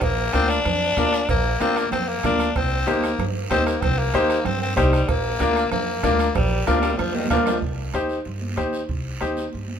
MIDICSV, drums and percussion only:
0, 0, Header, 1, 3, 480
1, 0, Start_track
1, 0, Key_signature, -3, "minor"
1, 0, Tempo, 316957
1, 32, Time_signature, 4, 2, 24, 8
1, 14832, End_track
2, 0, Start_track
2, 0, Title_t, "Two-headed folk drums"
2, 14, Note_on_c, 9, 37, 85
2, 22, Note_on_c, 9, 36, 80
2, 165, Note_off_c, 9, 37, 0
2, 174, Note_off_c, 9, 36, 0
2, 505, Note_on_c, 9, 37, 77
2, 656, Note_off_c, 9, 37, 0
2, 748, Note_on_c, 9, 37, 83
2, 900, Note_off_c, 9, 37, 0
2, 989, Note_on_c, 9, 37, 81
2, 1141, Note_off_c, 9, 37, 0
2, 1468, Note_on_c, 9, 36, 83
2, 1470, Note_on_c, 9, 37, 81
2, 1620, Note_off_c, 9, 36, 0
2, 1621, Note_off_c, 9, 37, 0
2, 1705, Note_on_c, 9, 37, 87
2, 1857, Note_off_c, 9, 37, 0
2, 1950, Note_on_c, 9, 36, 85
2, 1950, Note_on_c, 9, 37, 78
2, 2101, Note_off_c, 9, 37, 0
2, 2102, Note_off_c, 9, 36, 0
2, 2436, Note_on_c, 9, 37, 79
2, 2588, Note_off_c, 9, 37, 0
2, 2678, Note_on_c, 9, 37, 86
2, 2829, Note_off_c, 9, 37, 0
2, 2918, Note_on_c, 9, 37, 78
2, 3069, Note_off_c, 9, 37, 0
2, 3387, Note_on_c, 9, 37, 88
2, 3389, Note_on_c, 9, 36, 83
2, 3539, Note_off_c, 9, 37, 0
2, 3541, Note_off_c, 9, 36, 0
2, 3632, Note_on_c, 9, 37, 85
2, 3784, Note_off_c, 9, 37, 0
2, 3872, Note_on_c, 9, 36, 84
2, 3877, Note_on_c, 9, 37, 82
2, 4023, Note_off_c, 9, 36, 0
2, 4028, Note_off_c, 9, 37, 0
2, 4357, Note_on_c, 9, 37, 77
2, 4508, Note_off_c, 9, 37, 0
2, 4598, Note_on_c, 9, 37, 90
2, 4750, Note_off_c, 9, 37, 0
2, 4841, Note_on_c, 9, 37, 82
2, 4992, Note_off_c, 9, 37, 0
2, 5309, Note_on_c, 9, 36, 80
2, 5311, Note_on_c, 9, 37, 84
2, 5461, Note_off_c, 9, 36, 0
2, 5463, Note_off_c, 9, 37, 0
2, 5554, Note_on_c, 9, 37, 86
2, 5706, Note_off_c, 9, 37, 0
2, 5787, Note_on_c, 9, 36, 88
2, 5793, Note_on_c, 9, 37, 82
2, 5938, Note_off_c, 9, 36, 0
2, 5944, Note_off_c, 9, 37, 0
2, 6266, Note_on_c, 9, 37, 78
2, 6417, Note_off_c, 9, 37, 0
2, 6508, Note_on_c, 9, 37, 85
2, 6660, Note_off_c, 9, 37, 0
2, 6744, Note_on_c, 9, 37, 80
2, 6895, Note_off_c, 9, 37, 0
2, 7226, Note_on_c, 9, 36, 82
2, 7231, Note_on_c, 9, 37, 84
2, 7377, Note_off_c, 9, 36, 0
2, 7383, Note_off_c, 9, 37, 0
2, 7468, Note_on_c, 9, 37, 86
2, 7619, Note_off_c, 9, 37, 0
2, 7701, Note_on_c, 9, 37, 87
2, 7703, Note_on_c, 9, 36, 83
2, 7853, Note_off_c, 9, 37, 0
2, 7854, Note_off_c, 9, 36, 0
2, 8182, Note_on_c, 9, 37, 82
2, 8333, Note_off_c, 9, 37, 0
2, 8424, Note_on_c, 9, 37, 87
2, 8575, Note_off_c, 9, 37, 0
2, 8655, Note_on_c, 9, 37, 87
2, 8807, Note_off_c, 9, 37, 0
2, 9138, Note_on_c, 9, 36, 91
2, 9138, Note_on_c, 9, 37, 89
2, 9289, Note_off_c, 9, 36, 0
2, 9289, Note_off_c, 9, 37, 0
2, 9389, Note_on_c, 9, 37, 92
2, 9541, Note_off_c, 9, 37, 0
2, 9621, Note_on_c, 9, 36, 81
2, 9626, Note_on_c, 9, 37, 81
2, 9772, Note_off_c, 9, 36, 0
2, 9778, Note_off_c, 9, 37, 0
2, 10104, Note_on_c, 9, 37, 79
2, 10255, Note_off_c, 9, 37, 0
2, 10343, Note_on_c, 9, 37, 86
2, 10494, Note_off_c, 9, 37, 0
2, 10589, Note_on_c, 9, 37, 84
2, 10740, Note_off_c, 9, 37, 0
2, 11061, Note_on_c, 9, 36, 89
2, 11062, Note_on_c, 9, 37, 85
2, 11212, Note_off_c, 9, 36, 0
2, 11214, Note_off_c, 9, 37, 0
2, 11296, Note_on_c, 9, 37, 85
2, 11448, Note_off_c, 9, 37, 0
2, 11543, Note_on_c, 9, 36, 76
2, 11694, Note_off_c, 9, 36, 0
2, 12019, Note_on_c, 9, 37, 69
2, 12171, Note_off_c, 9, 37, 0
2, 12984, Note_on_c, 9, 37, 77
2, 12986, Note_on_c, 9, 36, 72
2, 13136, Note_off_c, 9, 37, 0
2, 13137, Note_off_c, 9, 36, 0
2, 13464, Note_on_c, 9, 36, 78
2, 13615, Note_off_c, 9, 36, 0
2, 13942, Note_on_c, 9, 37, 72
2, 14093, Note_off_c, 9, 37, 0
2, 14832, End_track
3, 0, Start_track
3, 0, Title_t, "Drums"
3, 17, Note_on_c, 9, 74, 74
3, 24, Note_on_c, 9, 56, 97
3, 169, Note_off_c, 9, 74, 0
3, 176, Note_off_c, 9, 56, 0
3, 504, Note_on_c, 9, 73, 73
3, 509, Note_on_c, 9, 63, 84
3, 512, Note_on_c, 9, 56, 68
3, 656, Note_off_c, 9, 73, 0
3, 661, Note_off_c, 9, 63, 0
3, 663, Note_off_c, 9, 56, 0
3, 752, Note_on_c, 9, 73, 73
3, 903, Note_off_c, 9, 73, 0
3, 990, Note_on_c, 9, 74, 69
3, 992, Note_on_c, 9, 56, 83
3, 994, Note_on_c, 9, 64, 89
3, 1141, Note_off_c, 9, 74, 0
3, 1143, Note_off_c, 9, 56, 0
3, 1145, Note_off_c, 9, 64, 0
3, 1466, Note_on_c, 9, 73, 73
3, 1473, Note_on_c, 9, 63, 85
3, 1485, Note_on_c, 9, 56, 69
3, 1617, Note_off_c, 9, 73, 0
3, 1624, Note_off_c, 9, 63, 0
3, 1636, Note_off_c, 9, 56, 0
3, 1710, Note_on_c, 9, 73, 77
3, 1861, Note_off_c, 9, 73, 0
3, 1948, Note_on_c, 9, 74, 69
3, 1957, Note_on_c, 9, 56, 105
3, 2099, Note_off_c, 9, 74, 0
3, 2108, Note_off_c, 9, 56, 0
3, 2427, Note_on_c, 9, 63, 78
3, 2431, Note_on_c, 9, 73, 71
3, 2447, Note_on_c, 9, 56, 71
3, 2579, Note_off_c, 9, 63, 0
3, 2583, Note_off_c, 9, 73, 0
3, 2598, Note_off_c, 9, 56, 0
3, 2670, Note_on_c, 9, 63, 68
3, 2670, Note_on_c, 9, 73, 72
3, 2821, Note_off_c, 9, 73, 0
3, 2822, Note_off_c, 9, 63, 0
3, 2896, Note_on_c, 9, 64, 88
3, 2907, Note_on_c, 9, 74, 72
3, 2926, Note_on_c, 9, 56, 88
3, 3048, Note_off_c, 9, 64, 0
3, 3058, Note_off_c, 9, 74, 0
3, 3077, Note_off_c, 9, 56, 0
3, 3383, Note_on_c, 9, 73, 69
3, 3390, Note_on_c, 9, 63, 87
3, 3390, Note_on_c, 9, 64, 72
3, 3398, Note_on_c, 9, 56, 70
3, 3534, Note_off_c, 9, 73, 0
3, 3541, Note_off_c, 9, 63, 0
3, 3541, Note_off_c, 9, 64, 0
3, 3549, Note_off_c, 9, 56, 0
3, 3622, Note_on_c, 9, 73, 75
3, 3773, Note_off_c, 9, 73, 0
3, 3874, Note_on_c, 9, 56, 100
3, 3874, Note_on_c, 9, 74, 73
3, 4025, Note_off_c, 9, 56, 0
3, 4025, Note_off_c, 9, 74, 0
3, 4345, Note_on_c, 9, 63, 78
3, 4356, Note_on_c, 9, 56, 68
3, 4357, Note_on_c, 9, 73, 73
3, 4497, Note_off_c, 9, 63, 0
3, 4507, Note_off_c, 9, 56, 0
3, 4508, Note_off_c, 9, 73, 0
3, 4587, Note_on_c, 9, 63, 68
3, 4596, Note_on_c, 9, 73, 74
3, 4739, Note_off_c, 9, 63, 0
3, 4748, Note_off_c, 9, 73, 0
3, 4829, Note_on_c, 9, 64, 87
3, 4839, Note_on_c, 9, 74, 70
3, 4840, Note_on_c, 9, 56, 84
3, 4980, Note_off_c, 9, 64, 0
3, 4990, Note_off_c, 9, 74, 0
3, 4992, Note_off_c, 9, 56, 0
3, 5309, Note_on_c, 9, 63, 84
3, 5311, Note_on_c, 9, 56, 71
3, 5311, Note_on_c, 9, 66, 78
3, 5312, Note_on_c, 9, 73, 74
3, 5460, Note_off_c, 9, 63, 0
3, 5462, Note_off_c, 9, 56, 0
3, 5462, Note_off_c, 9, 66, 0
3, 5464, Note_off_c, 9, 73, 0
3, 5550, Note_on_c, 9, 73, 76
3, 5701, Note_off_c, 9, 73, 0
3, 5775, Note_on_c, 9, 64, 71
3, 5791, Note_on_c, 9, 74, 72
3, 5793, Note_on_c, 9, 56, 100
3, 5926, Note_off_c, 9, 64, 0
3, 5942, Note_off_c, 9, 74, 0
3, 5945, Note_off_c, 9, 56, 0
3, 6261, Note_on_c, 9, 63, 81
3, 6265, Note_on_c, 9, 73, 72
3, 6269, Note_on_c, 9, 56, 69
3, 6413, Note_off_c, 9, 63, 0
3, 6417, Note_off_c, 9, 73, 0
3, 6421, Note_off_c, 9, 56, 0
3, 6509, Note_on_c, 9, 73, 74
3, 6660, Note_off_c, 9, 73, 0
3, 6732, Note_on_c, 9, 64, 90
3, 6749, Note_on_c, 9, 56, 83
3, 6756, Note_on_c, 9, 74, 75
3, 6884, Note_off_c, 9, 64, 0
3, 6900, Note_off_c, 9, 56, 0
3, 6907, Note_off_c, 9, 74, 0
3, 7207, Note_on_c, 9, 63, 82
3, 7226, Note_on_c, 9, 56, 73
3, 7240, Note_on_c, 9, 73, 74
3, 7358, Note_off_c, 9, 63, 0
3, 7378, Note_off_c, 9, 56, 0
3, 7391, Note_off_c, 9, 73, 0
3, 7467, Note_on_c, 9, 73, 78
3, 7618, Note_off_c, 9, 73, 0
3, 7703, Note_on_c, 9, 56, 106
3, 7711, Note_on_c, 9, 74, 75
3, 7855, Note_off_c, 9, 56, 0
3, 7862, Note_off_c, 9, 74, 0
3, 8171, Note_on_c, 9, 63, 83
3, 8175, Note_on_c, 9, 56, 66
3, 8185, Note_on_c, 9, 73, 74
3, 8322, Note_off_c, 9, 63, 0
3, 8327, Note_off_c, 9, 56, 0
3, 8336, Note_off_c, 9, 73, 0
3, 8420, Note_on_c, 9, 73, 76
3, 8572, Note_off_c, 9, 73, 0
3, 8653, Note_on_c, 9, 64, 93
3, 8655, Note_on_c, 9, 74, 74
3, 8661, Note_on_c, 9, 56, 87
3, 8805, Note_off_c, 9, 64, 0
3, 8807, Note_off_c, 9, 74, 0
3, 8812, Note_off_c, 9, 56, 0
3, 9132, Note_on_c, 9, 63, 86
3, 9144, Note_on_c, 9, 56, 74
3, 9144, Note_on_c, 9, 66, 76
3, 9147, Note_on_c, 9, 73, 74
3, 9284, Note_off_c, 9, 63, 0
3, 9295, Note_off_c, 9, 56, 0
3, 9295, Note_off_c, 9, 66, 0
3, 9298, Note_off_c, 9, 73, 0
3, 9378, Note_on_c, 9, 73, 80
3, 9529, Note_off_c, 9, 73, 0
3, 9607, Note_on_c, 9, 64, 72
3, 9621, Note_on_c, 9, 74, 78
3, 9623, Note_on_c, 9, 56, 103
3, 9759, Note_off_c, 9, 64, 0
3, 9772, Note_off_c, 9, 74, 0
3, 9774, Note_off_c, 9, 56, 0
3, 10096, Note_on_c, 9, 63, 89
3, 10098, Note_on_c, 9, 73, 75
3, 10108, Note_on_c, 9, 56, 69
3, 10108, Note_on_c, 9, 65, 98
3, 10247, Note_off_c, 9, 63, 0
3, 10249, Note_off_c, 9, 73, 0
3, 10260, Note_off_c, 9, 56, 0
3, 10260, Note_off_c, 9, 65, 0
3, 10341, Note_on_c, 9, 73, 70
3, 10342, Note_on_c, 9, 65, 90
3, 10346, Note_on_c, 9, 63, 71
3, 10492, Note_off_c, 9, 73, 0
3, 10494, Note_off_c, 9, 65, 0
3, 10497, Note_off_c, 9, 63, 0
3, 10581, Note_on_c, 9, 64, 87
3, 10584, Note_on_c, 9, 74, 75
3, 10592, Note_on_c, 9, 56, 90
3, 10732, Note_off_c, 9, 64, 0
3, 10735, Note_off_c, 9, 74, 0
3, 10743, Note_off_c, 9, 56, 0
3, 10816, Note_on_c, 9, 63, 98
3, 10828, Note_on_c, 9, 66, 90
3, 10968, Note_off_c, 9, 63, 0
3, 10974, Note_on_c, 9, 63, 74
3, 10979, Note_off_c, 9, 66, 0
3, 11060, Note_on_c, 9, 73, 74
3, 11074, Note_on_c, 9, 56, 73
3, 11074, Note_on_c, 9, 66, 103
3, 11125, Note_off_c, 9, 63, 0
3, 11211, Note_off_c, 9, 73, 0
3, 11225, Note_off_c, 9, 56, 0
3, 11225, Note_off_c, 9, 66, 0
3, 11300, Note_on_c, 9, 64, 76
3, 11309, Note_on_c, 9, 66, 101
3, 11310, Note_on_c, 9, 73, 80
3, 11451, Note_off_c, 9, 64, 0
3, 11461, Note_off_c, 9, 66, 0
3, 11461, Note_off_c, 9, 73, 0
3, 11539, Note_on_c, 9, 63, 30
3, 11544, Note_on_c, 9, 74, 64
3, 11690, Note_off_c, 9, 63, 0
3, 11696, Note_off_c, 9, 74, 0
3, 12019, Note_on_c, 9, 63, 83
3, 12021, Note_on_c, 9, 73, 66
3, 12171, Note_off_c, 9, 63, 0
3, 12173, Note_off_c, 9, 73, 0
3, 12257, Note_on_c, 9, 73, 60
3, 12409, Note_off_c, 9, 73, 0
3, 12497, Note_on_c, 9, 63, 33
3, 12498, Note_on_c, 9, 74, 64
3, 12648, Note_off_c, 9, 63, 0
3, 12649, Note_off_c, 9, 74, 0
3, 12738, Note_on_c, 9, 63, 65
3, 12890, Note_off_c, 9, 63, 0
3, 12978, Note_on_c, 9, 63, 74
3, 12980, Note_on_c, 9, 73, 62
3, 13130, Note_off_c, 9, 63, 0
3, 13131, Note_off_c, 9, 73, 0
3, 13220, Note_on_c, 9, 73, 65
3, 13372, Note_off_c, 9, 73, 0
3, 13463, Note_on_c, 9, 74, 63
3, 13464, Note_on_c, 9, 63, 33
3, 13614, Note_off_c, 9, 74, 0
3, 13615, Note_off_c, 9, 63, 0
3, 13948, Note_on_c, 9, 63, 85
3, 13961, Note_on_c, 9, 73, 63
3, 14099, Note_off_c, 9, 63, 0
3, 14113, Note_off_c, 9, 73, 0
3, 14183, Note_on_c, 9, 63, 58
3, 14190, Note_on_c, 9, 73, 66
3, 14335, Note_off_c, 9, 63, 0
3, 14341, Note_off_c, 9, 73, 0
3, 14422, Note_on_c, 9, 63, 33
3, 14428, Note_on_c, 9, 74, 62
3, 14573, Note_off_c, 9, 63, 0
3, 14579, Note_off_c, 9, 74, 0
3, 14658, Note_on_c, 9, 63, 66
3, 14809, Note_off_c, 9, 63, 0
3, 14832, End_track
0, 0, End_of_file